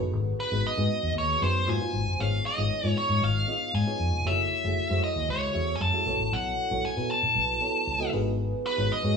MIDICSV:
0, 0, Header, 1, 5, 480
1, 0, Start_track
1, 0, Tempo, 516796
1, 110, Time_signature, 4, 2, 24, 8
1, 8515, End_track
2, 0, Start_track
2, 0, Title_t, "Lead electric guitar"
2, 0, Program_c, 0, 29
2, 371, Note_on_c, 0, 71, 80
2, 607, Note_off_c, 0, 71, 0
2, 618, Note_on_c, 0, 75, 94
2, 1051, Note_off_c, 0, 75, 0
2, 1098, Note_on_c, 0, 73, 86
2, 1329, Note_off_c, 0, 73, 0
2, 1333, Note_on_c, 0, 72, 78
2, 1568, Note_off_c, 0, 72, 0
2, 1573, Note_on_c, 0, 80, 95
2, 2048, Note_on_c, 0, 77, 84
2, 2055, Note_off_c, 0, 80, 0
2, 2283, Note_off_c, 0, 77, 0
2, 2287, Note_on_c, 0, 75, 97
2, 2677, Note_off_c, 0, 75, 0
2, 2677, Note_on_c, 0, 73, 97
2, 2765, Note_off_c, 0, 73, 0
2, 2765, Note_on_c, 0, 73, 93
2, 3004, Note_off_c, 0, 73, 0
2, 3007, Note_on_c, 0, 77, 89
2, 3480, Note_on_c, 0, 80, 89
2, 3492, Note_off_c, 0, 77, 0
2, 3963, Note_on_c, 0, 76, 90
2, 3969, Note_off_c, 0, 80, 0
2, 4675, Note_off_c, 0, 76, 0
2, 4678, Note_on_c, 0, 75, 105
2, 4897, Note_off_c, 0, 75, 0
2, 4924, Note_on_c, 0, 73, 88
2, 5344, Note_off_c, 0, 73, 0
2, 5347, Note_on_c, 0, 80, 75
2, 5400, Note_off_c, 0, 80, 0
2, 5404, Note_on_c, 0, 81, 95
2, 5882, Note_on_c, 0, 78, 95
2, 5891, Note_off_c, 0, 81, 0
2, 6362, Note_on_c, 0, 80, 103
2, 6370, Note_off_c, 0, 78, 0
2, 6601, Note_off_c, 0, 80, 0
2, 6604, Note_on_c, 0, 81, 109
2, 7519, Note_off_c, 0, 81, 0
2, 8047, Note_on_c, 0, 71, 91
2, 8284, Note_on_c, 0, 75, 99
2, 8285, Note_off_c, 0, 71, 0
2, 8515, Note_off_c, 0, 75, 0
2, 8515, End_track
3, 0, Start_track
3, 0, Title_t, "FM electric piano"
3, 0, Program_c, 1, 5
3, 0, Note_on_c, 1, 59, 97
3, 0, Note_on_c, 1, 63, 86
3, 0, Note_on_c, 1, 66, 87
3, 0, Note_on_c, 1, 68, 81
3, 0, Note_on_c, 1, 71, 99
3, 24, Control_c, 1, 64, 127
3, 359, Note_off_c, 1, 59, 0
3, 361, Note_off_c, 1, 66, 0
3, 362, Note_off_c, 1, 63, 0
3, 363, Note_off_c, 1, 68, 0
3, 365, Note_off_c, 1, 71, 0
3, 475, Note_on_c, 1, 59, 72
3, 478, Note_on_c, 1, 63, 68
3, 482, Note_on_c, 1, 66, 63
3, 483, Note_on_c, 1, 68, 63
3, 487, Note_on_c, 1, 71, 77
3, 668, Note_off_c, 1, 59, 0
3, 669, Note_off_c, 1, 63, 0
3, 672, Note_off_c, 1, 66, 0
3, 672, Note_off_c, 1, 68, 0
3, 674, Note_off_c, 1, 71, 0
3, 713, Note_on_c, 1, 59, 75
3, 716, Note_on_c, 1, 63, 68
3, 719, Note_on_c, 1, 66, 74
3, 723, Note_on_c, 1, 68, 70
3, 724, Note_on_c, 1, 71, 83
3, 1201, Note_off_c, 1, 59, 0
3, 1202, Note_off_c, 1, 63, 0
3, 1204, Note_off_c, 1, 66, 0
3, 1206, Note_off_c, 1, 68, 0
3, 1206, Note_off_c, 1, 71, 0
3, 1311, Note_on_c, 1, 59, 71
3, 1317, Note_on_c, 1, 63, 68
3, 1317, Note_on_c, 1, 66, 60
3, 1322, Note_on_c, 1, 71, 78
3, 1323, Note_on_c, 1, 68, 71
3, 1540, Note_off_c, 1, 63, 0
3, 1547, Note_off_c, 1, 66, 0
3, 1550, Note_off_c, 1, 59, 0
3, 1551, Note_on_c, 1, 63, 72
3, 1553, Note_on_c, 1, 58, 80
3, 1555, Note_on_c, 1, 65, 77
3, 1556, Note_off_c, 1, 68, 0
3, 1556, Note_off_c, 1, 71, 0
3, 1558, Note_on_c, 1, 66, 76
3, 1560, Control_c, 1, 64, 0
3, 1562, Note_on_c, 1, 72, 88
3, 1648, Note_off_c, 1, 63, 0
3, 1649, Note_off_c, 1, 58, 0
3, 1650, Note_off_c, 1, 65, 0
3, 1652, Note_off_c, 1, 66, 0
3, 1654, Note_off_c, 1, 72, 0
3, 1677, Note_on_c, 1, 58, 67
3, 1678, Note_on_c, 1, 63, 65
3, 1678, Note_on_c, 1, 65, 69
3, 1683, Note_on_c, 1, 66, 66
3, 1685, Note_on_c, 1, 72, 84
3, 1723, Control_c, 1, 64, 127
3, 1967, Note_off_c, 1, 58, 0
3, 1968, Note_off_c, 1, 63, 0
3, 1968, Note_off_c, 1, 65, 0
3, 1970, Note_off_c, 1, 66, 0
3, 1971, Note_off_c, 1, 72, 0
3, 2038, Note_on_c, 1, 59, 76
3, 2041, Note_on_c, 1, 63, 65
3, 2042, Control_c, 1, 64, 0
3, 2043, Note_on_c, 1, 65, 65
3, 2047, Note_on_c, 1, 68, 66
3, 2051, Note_on_c, 1, 73, 82
3, 2217, Control_c, 1, 64, 127
3, 2328, Note_off_c, 1, 59, 0
3, 2329, Note_off_c, 1, 63, 0
3, 2330, Note_off_c, 1, 65, 0
3, 2332, Note_off_c, 1, 68, 0
3, 2334, Note_off_c, 1, 73, 0
3, 2387, Note_on_c, 1, 59, 68
3, 2393, Note_on_c, 1, 63, 69
3, 2394, Note_on_c, 1, 65, 63
3, 2396, Note_on_c, 1, 68, 66
3, 2400, Note_on_c, 1, 75, 74
3, 2584, Note_off_c, 1, 59, 0
3, 2587, Note_off_c, 1, 63, 0
3, 2588, Note_off_c, 1, 65, 0
3, 2588, Note_off_c, 1, 68, 0
3, 2591, Note_off_c, 1, 75, 0
3, 2628, Note_on_c, 1, 59, 72
3, 2631, Note_on_c, 1, 63, 71
3, 2634, Note_on_c, 1, 65, 70
3, 2636, Note_on_c, 1, 68, 76
3, 2639, Note_on_c, 1, 73, 80
3, 3118, Note_off_c, 1, 59, 0
3, 3120, Note_off_c, 1, 63, 0
3, 3121, Note_off_c, 1, 65, 0
3, 3122, Note_off_c, 1, 68, 0
3, 3124, Note_off_c, 1, 73, 0
3, 3227, Note_on_c, 1, 59, 71
3, 3233, Note_on_c, 1, 63, 62
3, 3233, Note_on_c, 1, 65, 59
3, 3235, Note_on_c, 1, 68, 61
3, 3239, Note_on_c, 1, 75, 82
3, 3522, Note_off_c, 1, 59, 0
3, 3525, Note_off_c, 1, 63, 0
3, 3525, Note_off_c, 1, 65, 0
3, 3526, Note_off_c, 1, 68, 0
3, 3528, Note_off_c, 1, 75, 0
3, 3589, Note_on_c, 1, 59, 73
3, 3594, Note_on_c, 1, 63, 62
3, 3597, Note_on_c, 1, 65, 62
3, 3598, Note_on_c, 1, 68, 61
3, 3601, Note_on_c, 1, 73, 77
3, 3883, Note_off_c, 1, 59, 0
3, 3885, Note_off_c, 1, 63, 0
3, 3887, Note_off_c, 1, 65, 0
3, 3887, Note_off_c, 1, 68, 0
3, 3889, Note_off_c, 1, 73, 0
3, 3948, Note_on_c, 1, 57, 76
3, 3954, Note_on_c, 1, 64, 63
3, 3956, Note_on_c, 1, 66, 69
3, 3957, Note_on_c, 1, 68, 67
3, 3958, Note_on_c, 1, 73, 82
3, 3961, Control_c, 1, 64, 0
3, 4144, Control_c, 1, 64, 127
3, 4242, Note_off_c, 1, 57, 0
3, 4245, Note_off_c, 1, 64, 0
3, 4246, Note_off_c, 1, 66, 0
3, 4247, Note_off_c, 1, 68, 0
3, 4248, Note_off_c, 1, 73, 0
3, 4313, Note_on_c, 1, 57, 72
3, 4314, Note_on_c, 1, 64, 67
3, 4316, Note_on_c, 1, 66, 65
3, 4319, Note_on_c, 1, 68, 62
3, 4321, Note_on_c, 1, 76, 75
3, 4507, Note_off_c, 1, 57, 0
3, 4508, Note_off_c, 1, 64, 0
3, 4508, Note_off_c, 1, 66, 0
3, 4510, Note_off_c, 1, 68, 0
3, 4511, Note_off_c, 1, 76, 0
3, 4548, Note_on_c, 1, 57, 77
3, 4550, Note_on_c, 1, 64, 67
3, 4552, Note_on_c, 1, 66, 72
3, 4553, Note_on_c, 1, 68, 70
3, 4558, Note_on_c, 1, 72, 68
3, 4611, Note_off_c, 1, 72, 0
3, 4615, Note_on_c, 1, 73, 82
3, 5038, Note_off_c, 1, 57, 0
3, 5039, Note_off_c, 1, 64, 0
3, 5040, Note_off_c, 1, 66, 0
3, 5041, Note_off_c, 1, 68, 0
3, 5072, Note_off_c, 1, 73, 0
3, 5141, Note_on_c, 1, 57, 71
3, 5144, Note_on_c, 1, 64, 65
3, 5144, Note_on_c, 1, 66, 70
3, 5150, Note_on_c, 1, 68, 60
3, 5150, Note_on_c, 1, 76, 77
3, 5439, Note_off_c, 1, 57, 0
3, 5440, Note_off_c, 1, 64, 0
3, 5440, Note_off_c, 1, 66, 0
3, 5443, Note_off_c, 1, 68, 0
3, 5443, Note_off_c, 1, 76, 0
3, 5504, Note_on_c, 1, 57, 70
3, 5506, Note_on_c, 1, 64, 59
3, 5508, Note_on_c, 1, 66, 64
3, 5511, Note_on_c, 1, 68, 64
3, 5511, Note_on_c, 1, 76, 79
3, 5618, Note_off_c, 1, 64, 0
3, 5623, Note_off_c, 1, 66, 0
3, 5626, Note_off_c, 1, 57, 0
3, 5629, Note_on_c, 1, 64, 72
3, 5630, Note_off_c, 1, 68, 0
3, 5630, Note_off_c, 1, 76, 0
3, 5631, Note_on_c, 1, 59, 80
3, 5634, Note_on_c, 1, 66, 69
3, 5638, Note_on_c, 1, 69, 72
3, 5639, Control_c, 1, 64, 0
3, 5641, Note_on_c, 1, 73, 87
3, 5795, Control_c, 1, 64, 127
3, 6119, Note_off_c, 1, 59, 0
3, 6119, Note_off_c, 1, 64, 0
3, 6121, Note_off_c, 1, 66, 0
3, 6123, Note_off_c, 1, 69, 0
3, 6124, Note_off_c, 1, 73, 0
3, 6224, Note_on_c, 1, 59, 74
3, 6227, Note_on_c, 1, 64, 69
3, 6231, Note_on_c, 1, 66, 64
3, 6231, Note_on_c, 1, 69, 67
3, 6238, Note_on_c, 1, 73, 77
3, 6422, Note_off_c, 1, 59, 0
3, 6424, Note_off_c, 1, 64, 0
3, 6426, Note_off_c, 1, 66, 0
3, 6426, Note_off_c, 1, 69, 0
3, 6429, Note_off_c, 1, 73, 0
3, 6466, Note_on_c, 1, 59, 79
3, 6469, Note_on_c, 1, 64, 75
3, 6470, Note_on_c, 1, 66, 74
3, 6475, Note_on_c, 1, 69, 67
3, 6477, Note_on_c, 1, 71, 76
3, 6957, Note_off_c, 1, 59, 0
3, 6958, Note_off_c, 1, 64, 0
3, 6959, Note_off_c, 1, 66, 0
3, 6961, Note_off_c, 1, 69, 0
3, 6962, Note_off_c, 1, 71, 0
3, 7066, Note_on_c, 1, 59, 66
3, 7069, Note_on_c, 1, 64, 65
3, 7072, Note_on_c, 1, 66, 60
3, 7073, Note_on_c, 1, 69, 67
3, 7075, Note_on_c, 1, 73, 76
3, 7361, Note_off_c, 1, 59, 0
3, 7362, Note_off_c, 1, 64, 0
3, 7364, Note_off_c, 1, 66, 0
3, 7365, Note_off_c, 1, 69, 0
3, 7366, Note_off_c, 1, 73, 0
3, 7421, Note_on_c, 1, 59, 83
3, 7426, Note_on_c, 1, 64, 72
3, 7427, Note_on_c, 1, 66, 77
3, 7427, Note_on_c, 1, 69, 79
3, 7432, Note_on_c, 1, 75, 92
3, 7527, Note_off_c, 1, 59, 0
3, 7535, Note_off_c, 1, 66, 0
3, 7538, Note_on_c, 1, 59, 94
3, 7541, Note_on_c, 1, 63, 86
3, 7546, Note_on_c, 1, 66, 88
3, 7547, Note_off_c, 1, 64, 0
3, 7548, Note_off_c, 1, 69, 0
3, 7549, Note_on_c, 1, 68, 90
3, 7550, Note_off_c, 1, 75, 0
3, 7551, Note_on_c, 1, 71, 98
3, 7562, Control_c, 1, 64, 0
3, 7702, Control_c, 1, 64, 127
3, 8033, Note_off_c, 1, 59, 0
3, 8034, Note_off_c, 1, 63, 0
3, 8037, Note_off_c, 1, 66, 0
3, 8038, Note_off_c, 1, 68, 0
3, 8039, Note_off_c, 1, 71, 0
3, 8143, Note_on_c, 1, 59, 74
3, 8146, Note_on_c, 1, 63, 71
3, 8146, Note_on_c, 1, 66, 65
3, 8149, Note_on_c, 1, 68, 71
3, 8153, Note_on_c, 1, 73, 71
3, 8342, Note_off_c, 1, 59, 0
3, 8343, Note_off_c, 1, 63, 0
3, 8343, Note_off_c, 1, 66, 0
3, 8345, Note_off_c, 1, 68, 0
3, 8347, Note_off_c, 1, 73, 0
3, 8388, Note_on_c, 1, 59, 80
3, 8391, Note_on_c, 1, 63, 66
3, 8396, Note_on_c, 1, 66, 73
3, 8398, Note_on_c, 1, 68, 70
3, 8400, Note_on_c, 1, 73, 83
3, 8515, Note_off_c, 1, 59, 0
3, 8515, Note_off_c, 1, 63, 0
3, 8515, Note_off_c, 1, 66, 0
3, 8515, Note_off_c, 1, 68, 0
3, 8515, Note_off_c, 1, 73, 0
3, 8515, End_track
4, 0, Start_track
4, 0, Title_t, "Fingered electric bass"
4, 0, Program_c, 2, 33
4, 120, Note_on_c, 2, 32, 101
4, 297, Note_off_c, 2, 32, 0
4, 479, Note_on_c, 2, 32, 101
4, 566, Note_off_c, 2, 32, 0
4, 720, Note_on_c, 2, 44, 83
4, 807, Note_off_c, 2, 44, 0
4, 959, Note_on_c, 2, 40, 92
4, 1046, Note_off_c, 2, 40, 0
4, 1071, Note_on_c, 2, 39, 109
4, 1252, Note_off_c, 2, 39, 0
4, 1315, Note_on_c, 2, 42, 88
4, 1555, Note_off_c, 2, 42, 0
4, 1555, Note_on_c, 2, 44, 94
4, 1643, Note_off_c, 2, 44, 0
4, 1794, Note_on_c, 2, 32, 91
4, 1914, Note_off_c, 2, 32, 0
4, 1914, Note_on_c, 2, 30, 93
4, 2003, Note_off_c, 2, 30, 0
4, 2039, Note_on_c, 2, 32, 101
4, 2216, Note_off_c, 2, 32, 0
4, 2397, Note_on_c, 2, 32, 101
4, 2485, Note_off_c, 2, 32, 0
4, 2634, Note_on_c, 2, 44, 90
4, 2723, Note_off_c, 2, 44, 0
4, 2871, Note_on_c, 2, 44, 90
4, 2961, Note_off_c, 2, 44, 0
4, 2992, Note_on_c, 2, 32, 96
4, 3172, Note_off_c, 2, 32, 0
4, 3471, Note_on_c, 2, 44, 99
4, 3561, Note_off_c, 2, 44, 0
4, 3711, Note_on_c, 2, 41, 74
4, 3801, Note_off_c, 2, 41, 0
4, 3832, Note_on_c, 2, 29, 90
4, 3921, Note_off_c, 2, 29, 0
4, 3949, Note_on_c, 2, 30, 92
4, 4130, Note_off_c, 2, 30, 0
4, 4311, Note_on_c, 2, 30, 99
4, 4401, Note_off_c, 2, 30, 0
4, 4553, Note_on_c, 2, 42, 79
4, 4642, Note_off_c, 2, 42, 0
4, 4792, Note_on_c, 2, 39, 77
4, 4881, Note_off_c, 2, 39, 0
4, 4910, Note_on_c, 2, 37, 96
4, 5091, Note_off_c, 2, 37, 0
4, 5153, Note_on_c, 2, 40, 88
4, 5333, Note_off_c, 2, 40, 0
4, 5391, Note_on_c, 2, 42, 99
4, 5481, Note_off_c, 2, 42, 0
4, 5628, Note_on_c, 2, 35, 97
4, 5719, Note_off_c, 2, 35, 0
4, 5751, Note_on_c, 2, 33, 82
4, 5841, Note_off_c, 2, 33, 0
4, 5873, Note_on_c, 2, 35, 96
4, 6052, Note_off_c, 2, 35, 0
4, 6233, Note_on_c, 2, 35, 96
4, 6322, Note_off_c, 2, 35, 0
4, 6474, Note_on_c, 2, 47, 89
4, 6563, Note_off_c, 2, 47, 0
4, 6713, Note_on_c, 2, 47, 77
4, 6802, Note_off_c, 2, 47, 0
4, 6829, Note_on_c, 2, 35, 90
4, 7010, Note_off_c, 2, 35, 0
4, 7310, Note_on_c, 2, 37, 93
4, 7491, Note_off_c, 2, 37, 0
4, 7553, Note_on_c, 2, 32, 93
4, 7914, Note_off_c, 2, 32, 0
4, 8155, Note_on_c, 2, 32, 105
4, 8243, Note_off_c, 2, 32, 0
4, 8391, Note_on_c, 2, 44, 90
4, 8481, Note_off_c, 2, 44, 0
4, 8515, End_track
5, 0, Start_track
5, 0, Title_t, "Muted fingered electric bass strokes"
5, 2515, Note_on_c, 9, 29, 50
5, 2608, Note_off_c, 9, 29, 0
5, 4434, Note_on_c, 9, 29, 55
5, 4527, Note_off_c, 9, 29, 0
5, 6352, Note_on_c, 9, 29, 53
5, 6445, Note_off_c, 9, 29, 0
5, 8273, Note_on_c, 9, 29, 55
5, 8365, Note_off_c, 9, 29, 0
5, 8515, End_track
0, 0, End_of_file